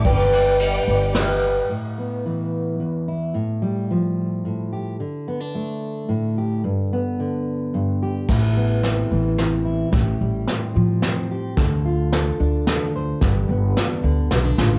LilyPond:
<<
  \new Staff \with { instrumentName = "String section" } { \time 3/4 \key a \minor \tempo 4 = 109 <b' d'' g'' d'''>2. | r2. | r2. | r2. |
r2. | r2. | r2. | r2. |
r2. | }
  \new Staff \with { instrumentName = "Twelve-string acoustic guitar" } { \time 3/4 \key a \minor <g d' g' b'>4 <g d' g' b'>4 <g d' g' b'>4 | r2. | r2. | r2. |
r2. | r2. | r2. | r2. |
r2. | }
  \new Staff \with { instrumentName = "Steel-string acoustic guitar" } { \time 3/4 \key a \minor << { r2. | r8 b2 e'8 | r8 g2 g'8 | r8 b16 d'4.~ d'16 g'8 |
r8 b2 g'8 | e'8 b8 c'4 c'8 e'8 | g'8 g8 c'4 c'8 g'8 | a'8 f'8 a'4 a'8 c''8 |
g'8 b8 d'4 b16 d'16 f'8 | } \\ { r2. | a,4 e4 e,4 | a,4 f4 a,4 | d4 a4 a,4 |
g,4 d4 g,4 | a,4. e4. | a,4. f4. | d4. d'4. |
g,4. d4. | } >> }
  \new Staff \with { instrumentName = "Upright bass" } { \clef bass \time 3/4 \key a \minor g,,4. g,,4. | r2. | r2. | r2. |
r2. | a,,4. a,,4. | a,,8 a,,8 r8 a,8 r4 | d,4. d,4. |
g,,8 g,,8 r8 d,8 b,,8 a,,8 | }
  \new DrumStaff \with { instrumentName = "Drums" } \drummode { \time 3/4 <bd cymr>8 cymr8 cymr4 <cymr sn>4 | r4 r4 r4 | r4 r4 r4 | r4 r4 r4 |
r4 r4 r4 | <cymc bd sn>4 <hh sn>4 <hh sn>4 | <hh bd sn>4 <hh sn>4 <hh sn>4 | <hh bd sn>4 <hh sn>4 <hh sn>4 |
<hh bd sn>4 <hh sn>4 <hh sn>8 sn8 | }
>>